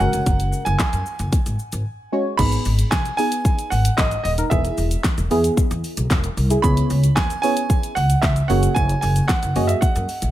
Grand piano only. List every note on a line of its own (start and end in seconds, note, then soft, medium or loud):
0.00 0.62 F#5 loud
0.65 0.77 G#5 medium
0.78 1.55 G#5 medium
2.37 2.88 B5 loud
2.91 3.16 G#5 loud
3.17 3.73 G#5 loud
3.70 3.98 F#5 medium
3.97 4.22 D#5 medium
4.24 4.30 D#5 medium
4.50 5.00 E5 medium
6.62 7.18 B5 loud
7.15 7.40 G#5 loud
7.42 7.97 G#5 loud
7.95 8.23 F#5 loud
8.22 8.50 E5 medium
8.48 8.76 F#5 medium
8.75 9.00 G#5 loud
9.01 9.29 G#5 loud
9.28 9.65 F#5 medium
9.67 9.82 E5 medium
9.81 10.31 F#5 medium